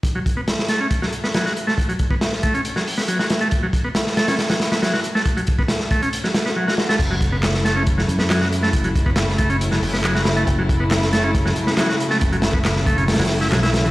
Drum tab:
CC |--------------------------------|--------------------------------|--------------------------------|--------------------------------|
HH |x---x---x---x---x---x---x---x---|x-x-x---x---x-x-x---o---x---x-x-|x---x---x---x-x-x-x-x-x-x---x---|x-x-x---x---x-x-x---x-----------|
CP |--------------------------------|--------------------------------|--------------------------------|--------------------------------|
SD |--------o-o-o-----o---o-o-o---o-|--------o-o-------o---o---o-o---|--------o-o-o-o-o-o-o-o-o-o---o-|--------o-o-------o-o-o---o-o-o-|
BD |o---o-----------o---------------|o---o-o-----o-------------------|o---o---------------------------|o---o-o-----o-------------------|

CC |x-------------------------------|--------------------------------|--------------------------------|--------------------------------|
HH |x---x---x---x---x---x---x---x---|x-x-x---x---x-x-x---o---x---x-x-|x---x---x---x---x---x---x---x---|x-x-x---x---x-x-xxxxo---x-x-x-x-|
CP |--------x---------------x-------|--------x---------------x-------|--------x---------------x-------|--------x---------------x-------|
SD |--------o-o-o-----o---o-o-o---o-|--------o-o-------o---o---o-o---|--------o-o-o-----o---o-o-o---o-|----o---o-o-----oooo--o-o-o-o---|
BD |o---o-----------o---------------|o---o-o-----o-------------------|o---o-----------o---------------|o-----o-----o-------------------|